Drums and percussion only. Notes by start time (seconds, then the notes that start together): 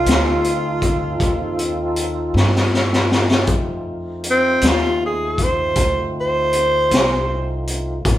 0.06 snare, closed hi-hat
0.44 closed hi-hat
0.82 kick, closed hi-hat
1.20 kick, closed hi-hat
1.59 closed hi-hat
1.96 closed hi-hat
2.36 snare
2.55 snare
2.74 snare
2.93 snare
3.11 snare
3.31 snare
3.47 kick, closed hi-hat
4.24 closed hi-hat
4.61 snare, closed hi-hat
5.38 kick, closed hi-hat
5.76 kick, closed hi-hat
6.53 closed hi-hat
6.91 snare, closed hi-hat
7.67 closed hi-hat
8.05 kick, closed hi-hat